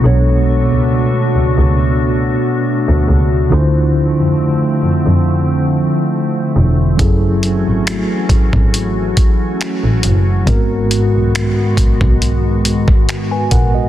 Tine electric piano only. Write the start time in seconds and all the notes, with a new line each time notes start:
0.01 B2 B3 D4 A4
0.06 C#5
3.49 D3 D4 E4 F4
3.54 C5
6.97 F#3 C#4 E4 G#4
7.01 A4
10.45 G#2 G#3 B3 F#4
10.49 A#4
13.31 B4 G#5
13.51 A#4 F#5
13.75 F#4 D#5